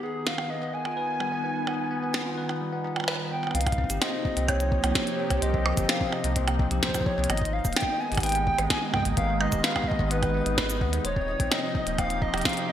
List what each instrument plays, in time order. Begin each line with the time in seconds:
Already playing: analog synth pad D#3 D#4, tine electric piano B3
0.03 tine electric piano B3, soft synth lead G#4
0.23 analog synth pad B3, tine electric piano B3, soft synth lead F5, snare
0.30 analog synth pad G#5
0.38 percussion blips
0.50 tine electric piano B3, soft synth lead D#5
0.62 tine electric piano B3
0.73 soft synth lead G#5
0.85 tine electric piano F4, percussion blips
0.97 tine electric piano B4
1.20 tine electric piano G3, percussion blips
1.32 tine electric piano B3
1.44 tine electric piano B3
1.67 tine electric piano B3, percussion blips
1.91 tine electric piano B3
2.02 tine electric piano B3
2.14 snare, percussion blips
2.26 tine electric piano F4
2.38 tine electric piano B4
2.49 percussion blips
2.61 tine electric piano G3
2.73 tine electric piano B3
2.84 tine electric piano B3
2.96 percussion blips
3.00 percussion blips
3.04 snare, percussion blips
3.08 tine electric piano B4, percussion blips
3.12 percussion blips
3.16 percussion blips
3.31 tine electric piano B3, soft synth lead G5
3.43 tine electric piano B3, percussion blips
3.47 percussion blips
3.51 sub bass C2, analog synth pad C3, tine electric piano C4, synth texture D#5, soft synth lead F5, closed hi-hat, percussion blips
3.61 closed hi-hat
3.66 analog synth pad A#3, kick, closed hi-hat, percussion blips
3.72 kick, closed hi-hat
3.77 analog synth pad F3, tine electric piano C4, kick
3.84 kick
3.90 sub bass G1, tine electric piano G4, closed hi-hat, cabasa
4.02 tine electric piano C5, soft synth lead D#5, snare, closed hi-hat, percussion blips
4.13 tine electric piano C4
4.22 analog synth pad G4, kick
4.37 sub bass C2, tine electric piano C4, closed hi-hat
4.48 tine electric piano C4, soft synth lead C#5, kick, closed hi-hat, percussion blips
4.60 closed hi-hat
4.72 kick
4.84 sub bass C2, tine electric piano A#3, closed hi-hat, percussion blips
4.95 tine electric piano C4, kick, snare, closed hi-hat
5.07 closed hi-hat
5.19 tine electric piano C4
5.30 sub bass C2, tine electric piano G4, kick, closed hi-hat, percussion blips
5.42 sub bass C2, tine electric piano C5, soft synth lead D#5, closed hi-hat
5.54 tine electric piano C4, kick
5.66 percussion blips
5.77 sub bass G1, tine electric piano C4, kick, closed hi-hat, cabasa
5.89 tine electric piano C4, soft synth lead F5, snare, closed hi-hat
6.01 kick
6.12 soft synth lead D#5, percussion blips
6.24 sub bass C2, tine electric piano A#3, closed hi-hat
6.36 tine electric piano C4, kick, closed hi-hat
6.48 closed hi-hat, percussion blips
6.59 tine electric piano C4, kick
6.71 sub bass C2, tine electric piano G4, closed hi-hat
6.83 soft synth lead C5, tine electric piano C5, kick, snare, closed hi-hat
6.89 kick
6.94 tine electric piano C4, kick, closed hi-hat, percussion blips, cabasa
7.00 kick
7.06 soft synth lead C#5, kick
7.18 sub bass C2, tine electric piano C4
7.24 closed hi-hat
7.30 sub bass G#1, analog synth pad D#3, tine electric piano B3, soft synth lead D#5, closed hi-hat, percussion blips
7.37 kick, closed hi-hat
7.45 closed hi-hat
7.53 soft synth lead F5
7.61 sub bass D#1, analog synth pad G#3, kick, closed hi-hat, cabasa
7.65 tine electric piano A#3
7.73 soft synth lead G5, snare, closed hi-hat
7.76 tine electric piano B3, closed hi-hat, percussion blips
7.80 kick, closed hi-hat
8.00 tine electric piano B3, soft synth lead G#5
8.12 sub bass G#1, tine electric piano G4, closed hi-hat
8.15 closed hi-hat
8.17 kick, closed hi-hat, percussion blips
8.20 soft synth lead G5, closed hi-hat
8.23 tine electric piano B4, closed hi-hat
8.26 closed hi-hat
8.29 closed hi-hat
8.32 closed hi-hat
8.35 tine electric piano B3, closed hi-hat
8.47 soft synth lead G5, kick
8.58 sub bass G#1, tine electric piano B3, closed hi-hat, percussion blips
8.70 tine electric piano B3, soft synth lead G#5, kick, snare, closed hi-hat
8.93 soft synth lead G5, kick, percussion blips
8.97 kick
9.00 kick
9.03 kick, closed hi-hat
9.05 sub bass G#1, tine electric piano A#3, kick
9.08 kick
9.11 kick
9.14 sub bass G#1, soft synth lead F5, kick, closed hi-hat
9.17 tine electric piano B3, kick
9.40 tine electric piano B3, soft synth lead D#5, percussion blips
9.52 sub bass D#1, tine electric piano G4, kick, closed hi-hat, cabasa
9.64 tine electric piano B4, soft synth lead F5, snare, closed hi-hat
9.76 tine electric piano B3, kick, percussion blips
9.84 soft synth lead D#5, kick
9.91 kick
9.99 sub bass G#1, tine electric piano B3, kick
10.11 tine electric piano B3, soft synth lead B4, closed hi-hat
10.23 kick, closed hi-hat, percussion blips
10.34 tine electric piano B3
10.46 sub bass G#1, closed hi-hat
10.58 tine electric piano B4, kick, snare, closed hi-hat, percussion blips
10.70 closed hi-hat, cabasa
10.81 sub bass D#2, tine electric piano B3, kick
10.93 tine electric piano B3, closed hi-hat
11.05 sub bass D#1, analog synth pad C3, tine electric piano C5, soft synth lead C#5, closed hi-hat
11.11 analog synth pad F3
11.16 tine electric piano C4, kick
11.40 sub bass A#1, tine electric piano C4, kick, closed hi-hat
11.52 tine electric piano C4, soft synth lead D#5, snare, closed hi-hat, percussion blips
11.61 analog synth pad A#3
11.69 analog synth pad G4
11.75 kick
11.87 sub bass D#1, tine electric piano A#3, closed hi-hat
11.98 tine electric piano C4, soft synth lead F5, kick, closed hi-hat, percussion blips
12.10 closed hi-hat
12.22 tine electric piano D#4, soft synth lead D#5, kick
12.33 sub bass D#1, tine electric piano G4, closed hi-hat, percussion blips
12.38 closed hi-hat
12.41 tine electric piano C5, soft synth lead F5, kick, snare, closed hi-hat
12.45 closed hi-hat
12.49 closed hi-hat
12.53 tine electric piano C4, closed hi-hat
12.57 closed hi-hat
12.69 soft synth lead D#5